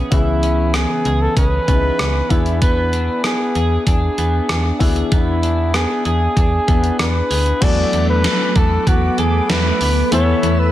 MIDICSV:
0, 0, Header, 1, 7, 480
1, 0, Start_track
1, 0, Tempo, 625000
1, 91, Time_signature, 4, 2, 24, 8
1, 8231, End_track
2, 0, Start_track
2, 0, Title_t, "String machine"
2, 0, Program_c, 0, 50
2, 5851, Note_on_c, 0, 86, 87
2, 5852, Note_on_c, 0, 57, 82
2, 5852, Note_on_c, 0, 78, 73
2, 5852, Note_on_c, 0, 83, 73
2, 7752, Note_off_c, 0, 78, 0
2, 7752, Note_off_c, 0, 86, 0
2, 7771, Note_on_c, 0, 88, 88
2, 7772, Note_on_c, 0, 76, 69
2, 8231, Note_off_c, 0, 57, 0
2, 8231, Note_off_c, 0, 76, 0
2, 8231, Note_off_c, 0, 83, 0
2, 8231, Note_off_c, 0, 88, 0
2, 8231, End_track
3, 0, Start_track
3, 0, Title_t, "Flugelhorn"
3, 0, Program_c, 1, 56
3, 97, Note_on_c, 1, 64, 82
3, 576, Note_on_c, 1, 68, 93
3, 588, Note_off_c, 1, 64, 0
3, 935, Note_on_c, 1, 69, 96
3, 946, Note_off_c, 1, 68, 0
3, 1050, Note_off_c, 1, 69, 0
3, 1054, Note_on_c, 1, 71, 99
3, 1772, Note_on_c, 1, 64, 86
3, 1784, Note_off_c, 1, 71, 0
3, 2007, Note_off_c, 1, 64, 0
3, 2011, Note_on_c, 1, 71, 96
3, 2460, Note_off_c, 1, 71, 0
3, 2492, Note_on_c, 1, 68, 92
3, 2941, Note_off_c, 1, 68, 0
3, 2972, Note_on_c, 1, 68, 80
3, 3660, Note_off_c, 1, 68, 0
3, 3936, Note_on_c, 1, 64, 86
3, 4418, Note_on_c, 1, 68, 99
3, 4430, Note_off_c, 1, 64, 0
3, 4655, Note_off_c, 1, 68, 0
3, 4659, Note_on_c, 1, 68, 95
3, 5344, Note_off_c, 1, 68, 0
3, 5376, Note_on_c, 1, 71, 91
3, 5858, Note_on_c, 1, 74, 106
3, 5870, Note_off_c, 1, 71, 0
3, 6212, Note_off_c, 1, 74, 0
3, 6217, Note_on_c, 1, 71, 98
3, 6576, Note_on_c, 1, 69, 95
3, 6588, Note_off_c, 1, 71, 0
3, 6816, Note_on_c, 1, 66, 86
3, 6828, Note_off_c, 1, 69, 0
3, 7056, Note_on_c, 1, 68, 91
3, 7067, Note_off_c, 1, 66, 0
3, 7296, Note_on_c, 1, 71, 94
3, 7308, Note_off_c, 1, 68, 0
3, 7774, Note_off_c, 1, 71, 0
3, 7778, Note_on_c, 1, 73, 103
3, 8136, Note_on_c, 1, 71, 93
3, 8148, Note_off_c, 1, 73, 0
3, 8231, Note_off_c, 1, 71, 0
3, 8231, End_track
4, 0, Start_track
4, 0, Title_t, "Clean electric guitar"
4, 0, Program_c, 2, 27
4, 0, Note_on_c, 2, 52, 80
4, 0, Note_on_c, 2, 59, 57
4, 0, Note_on_c, 2, 61, 59
4, 0, Note_on_c, 2, 68, 60
4, 89, Note_off_c, 2, 52, 0
4, 92, Note_on_c, 2, 52, 82
4, 321, Note_off_c, 2, 61, 0
4, 330, Note_on_c, 2, 61, 56
4, 567, Note_off_c, 2, 59, 0
4, 570, Note_on_c, 2, 59, 55
4, 808, Note_off_c, 2, 68, 0
4, 812, Note_on_c, 2, 68, 61
4, 1041, Note_off_c, 2, 61, 0
4, 1050, Note_on_c, 2, 61, 56
4, 1287, Note_off_c, 2, 59, 0
4, 1291, Note_on_c, 2, 59, 54
4, 1522, Note_off_c, 2, 61, 0
4, 1531, Note_on_c, 2, 61, 58
4, 1767, Note_off_c, 2, 59, 0
4, 1770, Note_on_c, 2, 59, 72
4, 1819, Note_off_c, 2, 61, 0
4, 2008, Note_off_c, 2, 59, 0
4, 2011, Note_on_c, 2, 59, 85
4, 2251, Note_on_c, 2, 62, 55
4, 2274, Note_off_c, 2, 52, 0
4, 2274, Note_off_c, 2, 68, 0
4, 2488, Note_off_c, 2, 59, 0
4, 2491, Note_on_c, 2, 59, 55
4, 2731, Note_on_c, 2, 68, 62
4, 2968, Note_off_c, 2, 62, 0
4, 2971, Note_on_c, 2, 62, 59
4, 3208, Note_off_c, 2, 59, 0
4, 3211, Note_on_c, 2, 59, 56
4, 3449, Note_off_c, 2, 62, 0
4, 3452, Note_on_c, 2, 62, 55
4, 3688, Note_off_c, 2, 68, 0
4, 3691, Note_on_c, 2, 66, 60
4, 3810, Note_off_c, 2, 66, 0
4, 3810, Note_on_c, 2, 68, 52
4, 3927, Note_off_c, 2, 59, 0
4, 3930, Note_on_c, 2, 59, 80
4, 4165, Note_off_c, 2, 62, 0
4, 4169, Note_on_c, 2, 62, 53
4, 4406, Note_off_c, 2, 59, 0
4, 4409, Note_on_c, 2, 59, 56
4, 4640, Note_off_c, 2, 68, 0
4, 4649, Note_on_c, 2, 68, 63
4, 4886, Note_off_c, 2, 62, 0
4, 4889, Note_on_c, 2, 62, 53
4, 5126, Note_off_c, 2, 59, 0
4, 5129, Note_on_c, 2, 59, 55
4, 5367, Note_off_c, 2, 62, 0
4, 5370, Note_on_c, 2, 62, 53
4, 5600, Note_off_c, 2, 68, 0
4, 5609, Note_on_c, 2, 68, 64
4, 5850, Note_on_c, 2, 54, 83
4, 5851, Note_off_c, 2, 68, 0
4, 5854, Note_on_c, 2, 69, 71
4, 6086, Note_off_c, 2, 62, 0
4, 6089, Note_on_c, 2, 64, 55
4, 6328, Note_off_c, 2, 69, 0
4, 6331, Note_on_c, 2, 69, 63
4, 6354, Note_off_c, 2, 59, 0
4, 6568, Note_off_c, 2, 64, 0
4, 6571, Note_on_c, 2, 64, 57
4, 6811, Note_on_c, 2, 59, 62
4, 7050, Note_off_c, 2, 69, 0
4, 7053, Note_on_c, 2, 69, 62
4, 7288, Note_off_c, 2, 64, 0
4, 7291, Note_on_c, 2, 64, 60
4, 7528, Note_off_c, 2, 59, 0
4, 7531, Note_on_c, 2, 59, 59
4, 7768, Note_off_c, 2, 59, 0
4, 7770, Note_off_c, 2, 54, 0
4, 7771, Note_on_c, 2, 59, 83
4, 7772, Note_off_c, 2, 69, 0
4, 7776, Note_on_c, 2, 69, 68
4, 8007, Note_off_c, 2, 64, 0
4, 8010, Note_on_c, 2, 64, 57
4, 8231, Note_off_c, 2, 59, 0
4, 8231, Note_off_c, 2, 64, 0
4, 8231, Note_off_c, 2, 69, 0
4, 8231, End_track
5, 0, Start_track
5, 0, Title_t, "Grand piano"
5, 0, Program_c, 3, 0
5, 0, Control_c, 3, 64, 127
5, 81, Note_on_c, 3, 59, 58
5, 87, Note_on_c, 3, 61, 55
5, 90, Note_on_c, 3, 49, 57
5, 93, Note_on_c, 3, 64, 56
5, 99, Note_on_c, 3, 68, 65
5, 780, Note_off_c, 3, 49, 0
5, 1262, Note_off_c, 3, 59, 0
5, 1265, Note_off_c, 3, 61, 0
5, 1268, Note_off_c, 3, 64, 0
5, 1271, Note_off_c, 3, 68, 0
5, 1286, Note_on_c, 3, 59, 49
5, 1289, Note_on_c, 3, 61, 43
5, 1292, Note_on_c, 3, 63, 33
5, 1295, Note_on_c, 3, 68, 51
5, 1341, Note_off_c, 3, 63, 0
5, 1342, Note_on_c, 3, 64, 44
5, 1749, Note_off_c, 3, 59, 0
5, 1760, Note_on_c, 3, 59, 62
5, 1761, Note_off_c, 3, 64, 0
5, 1766, Note_on_c, 3, 62, 58
5, 1767, Note_off_c, 3, 68, 0
5, 1769, Note_on_c, 3, 52, 58
5, 1770, Note_off_c, 3, 61, 0
5, 1772, Note_on_c, 3, 64, 59
5, 1779, Note_on_c, 3, 68, 68
5, 1782, Control_c, 3, 64, 0
5, 1911, Control_c, 3, 64, 127
5, 2459, Note_off_c, 3, 52, 0
5, 3655, Note_off_c, 3, 59, 0
5, 3658, Note_off_c, 3, 62, 0
5, 3661, Note_off_c, 3, 64, 0
5, 3664, Note_off_c, 3, 68, 0
5, 3680, Note_on_c, 3, 59, 72
5, 3686, Note_on_c, 3, 62, 69
5, 3689, Note_on_c, 3, 52, 69
5, 3692, Note_on_c, 3, 64, 68
5, 3698, Note_on_c, 3, 68, 79
5, 4379, Note_off_c, 3, 52, 0
5, 5097, Note_off_c, 3, 59, 0
5, 5099, Note_off_c, 3, 62, 0
5, 5102, Note_off_c, 3, 64, 0
5, 5106, Note_off_c, 3, 68, 0
5, 5124, Note_on_c, 3, 59, 47
5, 5128, Note_on_c, 3, 62, 43
5, 5130, Note_on_c, 3, 64, 41
5, 5134, Note_on_c, 3, 68, 51
5, 5829, Note_off_c, 3, 59, 0
5, 5835, Note_off_c, 3, 62, 0
5, 5840, Note_on_c, 3, 59, 61
5, 5847, Note_on_c, 3, 62, 55
5, 5850, Note_on_c, 3, 52, 59
5, 5851, Note_off_c, 3, 64, 0
5, 5852, Note_off_c, 3, 68, 0
5, 5853, Note_on_c, 3, 66, 57
5, 5859, Note_on_c, 3, 57, 67
5, 5861, Control_c, 3, 64, 0
5, 6014, Control_c, 3, 64, 127
5, 6540, Note_off_c, 3, 52, 0
5, 7735, Note_off_c, 3, 59, 0
5, 7738, Note_off_c, 3, 62, 0
5, 7741, Note_off_c, 3, 66, 0
5, 7744, Note_off_c, 3, 57, 0
5, 7763, Note_on_c, 3, 57, 60
5, 7769, Note_on_c, 3, 59, 56
5, 7772, Note_on_c, 3, 52, 63
5, 7775, Note_on_c, 3, 64, 57
5, 7780, Control_c, 3, 64, 0
5, 7782, Note_on_c, 3, 69, 66
5, 7919, Control_c, 3, 64, 127
5, 8231, Note_off_c, 3, 52, 0
5, 8231, Note_off_c, 3, 57, 0
5, 8231, Note_off_c, 3, 59, 0
5, 8231, Note_off_c, 3, 64, 0
5, 8231, Note_off_c, 3, 69, 0
5, 8231, End_track
6, 0, Start_track
6, 0, Title_t, "FM bass"
6, 0, Program_c, 4, 39
6, 90, Note_on_c, 4, 37, 106
6, 660, Note_off_c, 4, 37, 0
6, 810, Note_on_c, 4, 37, 102
6, 983, Note_off_c, 4, 37, 0
6, 1049, Note_on_c, 4, 37, 106
6, 1223, Note_off_c, 4, 37, 0
6, 1291, Note_on_c, 4, 37, 89
6, 1464, Note_off_c, 4, 37, 0
6, 1531, Note_on_c, 4, 37, 100
6, 1703, Note_off_c, 4, 37, 0
6, 1769, Note_on_c, 4, 40, 92
6, 2375, Note_off_c, 4, 40, 0
6, 2729, Note_on_c, 4, 40, 90
6, 2903, Note_off_c, 4, 40, 0
6, 2969, Note_on_c, 4, 40, 103
6, 3143, Note_off_c, 4, 40, 0
6, 3210, Note_on_c, 4, 40, 86
6, 3383, Note_off_c, 4, 40, 0
6, 3450, Note_on_c, 4, 40, 105
6, 3623, Note_off_c, 4, 40, 0
6, 3690, Note_on_c, 4, 38, 88
6, 3863, Note_off_c, 4, 38, 0
6, 3930, Note_on_c, 4, 40, 97
6, 4501, Note_off_c, 4, 40, 0
6, 4650, Note_on_c, 4, 40, 92
6, 4823, Note_off_c, 4, 40, 0
6, 4890, Note_on_c, 4, 40, 105
6, 5063, Note_off_c, 4, 40, 0
6, 5132, Note_on_c, 4, 40, 98
6, 5304, Note_off_c, 4, 40, 0
6, 5370, Note_on_c, 4, 40, 100
6, 5543, Note_off_c, 4, 40, 0
6, 5610, Note_on_c, 4, 38, 90
6, 5783, Note_off_c, 4, 38, 0
6, 5851, Note_on_c, 4, 40, 105
6, 6024, Note_off_c, 4, 40, 0
6, 6091, Note_on_c, 4, 40, 94
6, 6350, Note_off_c, 4, 40, 0
6, 6572, Note_on_c, 4, 40, 96
6, 6744, Note_off_c, 4, 40, 0
6, 6811, Note_on_c, 4, 40, 105
6, 6984, Note_off_c, 4, 40, 0
6, 7052, Note_on_c, 4, 40, 95
6, 7224, Note_off_c, 4, 40, 0
6, 7291, Note_on_c, 4, 40, 105
6, 7464, Note_off_c, 4, 40, 0
6, 7531, Note_on_c, 4, 38, 91
6, 7704, Note_off_c, 4, 38, 0
6, 7770, Note_on_c, 4, 40, 98
6, 7943, Note_off_c, 4, 40, 0
6, 8010, Note_on_c, 4, 40, 97
6, 8231, Note_off_c, 4, 40, 0
6, 8231, End_track
7, 0, Start_track
7, 0, Title_t, "Drums"
7, 90, Note_on_c, 9, 42, 93
7, 91, Note_on_c, 9, 36, 110
7, 167, Note_off_c, 9, 36, 0
7, 167, Note_off_c, 9, 42, 0
7, 330, Note_on_c, 9, 42, 68
7, 407, Note_off_c, 9, 42, 0
7, 567, Note_on_c, 9, 37, 97
7, 568, Note_on_c, 9, 42, 84
7, 644, Note_off_c, 9, 37, 0
7, 645, Note_off_c, 9, 42, 0
7, 809, Note_on_c, 9, 42, 56
7, 885, Note_off_c, 9, 42, 0
7, 1049, Note_on_c, 9, 36, 87
7, 1052, Note_on_c, 9, 42, 86
7, 1126, Note_off_c, 9, 36, 0
7, 1128, Note_off_c, 9, 42, 0
7, 1290, Note_on_c, 9, 42, 70
7, 1291, Note_on_c, 9, 36, 76
7, 1367, Note_off_c, 9, 36, 0
7, 1367, Note_off_c, 9, 42, 0
7, 1530, Note_on_c, 9, 42, 87
7, 1531, Note_on_c, 9, 37, 106
7, 1607, Note_off_c, 9, 42, 0
7, 1608, Note_off_c, 9, 37, 0
7, 1769, Note_on_c, 9, 36, 83
7, 1771, Note_on_c, 9, 42, 77
7, 1846, Note_off_c, 9, 36, 0
7, 1848, Note_off_c, 9, 42, 0
7, 1889, Note_on_c, 9, 42, 50
7, 1965, Note_off_c, 9, 42, 0
7, 2010, Note_on_c, 9, 36, 115
7, 2010, Note_on_c, 9, 42, 92
7, 2087, Note_off_c, 9, 36, 0
7, 2087, Note_off_c, 9, 42, 0
7, 2250, Note_on_c, 9, 42, 67
7, 2327, Note_off_c, 9, 42, 0
7, 2488, Note_on_c, 9, 37, 101
7, 2489, Note_on_c, 9, 42, 81
7, 2565, Note_off_c, 9, 37, 0
7, 2566, Note_off_c, 9, 42, 0
7, 2729, Note_on_c, 9, 42, 57
7, 2806, Note_off_c, 9, 42, 0
7, 2969, Note_on_c, 9, 36, 84
7, 2972, Note_on_c, 9, 42, 86
7, 3046, Note_off_c, 9, 36, 0
7, 3048, Note_off_c, 9, 42, 0
7, 3211, Note_on_c, 9, 42, 71
7, 3287, Note_off_c, 9, 42, 0
7, 3450, Note_on_c, 9, 42, 85
7, 3451, Note_on_c, 9, 37, 99
7, 3527, Note_off_c, 9, 37, 0
7, 3527, Note_off_c, 9, 42, 0
7, 3690, Note_on_c, 9, 36, 86
7, 3692, Note_on_c, 9, 46, 75
7, 3766, Note_off_c, 9, 36, 0
7, 3769, Note_off_c, 9, 46, 0
7, 3810, Note_on_c, 9, 42, 49
7, 3886, Note_off_c, 9, 42, 0
7, 3930, Note_on_c, 9, 36, 115
7, 3930, Note_on_c, 9, 42, 91
7, 4007, Note_off_c, 9, 36, 0
7, 4007, Note_off_c, 9, 42, 0
7, 4172, Note_on_c, 9, 42, 66
7, 4249, Note_off_c, 9, 42, 0
7, 4409, Note_on_c, 9, 37, 98
7, 4410, Note_on_c, 9, 42, 81
7, 4486, Note_off_c, 9, 37, 0
7, 4487, Note_off_c, 9, 42, 0
7, 4649, Note_on_c, 9, 42, 58
7, 4726, Note_off_c, 9, 42, 0
7, 4890, Note_on_c, 9, 36, 91
7, 4892, Note_on_c, 9, 42, 84
7, 4966, Note_off_c, 9, 36, 0
7, 4969, Note_off_c, 9, 42, 0
7, 5131, Note_on_c, 9, 36, 76
7, 5132, Note_on_c, 9, 42, 69
7, 5208, Note_off_c, 9, 36, 0
7, 5208, Note_off_c, 9, 42, 0
7, 5250, Note_on_c, 9, 42, 56
7, 5327, Note_off_c, 9, 42, 0
7, 5371, Note_on_c, 9, 37, 98
7, 5371, Note_on_c, 9, 42, 89
7, 5448, Note_off_c, 9, 37, 0
7, 5448, Note_off_c, 9, 42, 0
7, 5612, Note_on_c, 9, 46, 74
7, 5688, Note_off_c, 9, 46, 0
7, 5729, Note_on_c, 9, 42, 47
7, 5806, Note_off_c, 9, 42, 0
7, 5850, Note_on_c, 9, 42, 93
7, 5850, Note_on_c, 9, 49, 99
7, 5851, Note_on_c, 9, 36, 119
7, 5927, Note_off_c, 9, 42, 0
7, 5927, Note_off_c, 9, 49, 0
7, 5928, Note_off_c, 9, 36, 0
7, 6091, Note_on_c, 9, 42, 67
7, 6168, Note_off_c, 9, 42, 0
7, 6331, Note_on_c, 9, 38, 107
7, 6331, Note_on_c, 9, 42, 83
7, 6407, Note_off_c, 9, 38, 0
7, 6408, Note_off_c, 9, 42, 0
7, 6570, Note_on_c, 9, 42, 61
7, 6572, Note_on_c, 9, 36, 77
7, 6647, Note_off_c, 9, 42, 0
7, 6648, Note_off_c, 9, 36, 0
7, 6811, Note_on_c, 9, 36, 88
7, 6813, Note_on_c, 9, 42, 91
7, 6888, Note_off_c, 9, 36, 0
7, 6890, Note_off_c, 9, 42, 0
7, 7051, Note_on_c, 9, 42, 69
7, 7127, Note_off_c, 9, 42, 0
7, 7292, Note_on_c, 9, 42, 92
7, 7293, Note_on_c, 9, 38, 107
7, 7369, Note_off_c, 9, 42, 0
7, 7370, Note_off_c, 9, 38, 0
7, 7532, Note_on_c, 9, 46, 75
7, 7609, Note_off_c, 9, 46, 0
7, 7772, Note_on_c, 9, 42, 92
7, 7849, Note_off_c, 9, 42, 0
7, 8012, Note_on_c, 9, 42, 68
7, 8089, Note_off_c, 9, 42, 0
7, 8231, End_track
0, 0, End_of_file